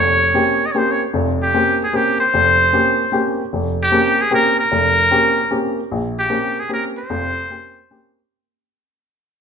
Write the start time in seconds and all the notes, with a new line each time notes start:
Already playing: F1 C#5
0.34 A#3 C4 C#4 G4
0.66 D#5
0.72 A#3 C4 C#4 G4 C#5
0.78 C5
0.91 C#5
1.14 F1 F2
1.43 G4
1.54 A#3 C4 C#4 G4
1.84 G#4
1.93 A#3 C4 C#4 G4
2.20 C5
2.34 F1
2.73 A#3 C4 C#4 G4
3.12 A#3 C4 C#4 G4
3.53 F1
3.82 G4
3.92 A#3 C4 C#4 G4
4.22 G#4
4.31 A#3 C4 C#4 G4 A#4
4.60 A#4
4.72 F1
5.11 A#3 C4 C#4 G4
5.51 A#3 C4 C#4 G4
5.91 A#1
6.19 G4
6.30 A#3 C4 C#4 G4
6.60 G#4
6.69 A#3 C4 C#4 G4
6.73 A#4
6.98 C5
7.10 F1 F2
7.50 A#3 C4 C#4 G4
7.91 A#3 C4 C#4 G4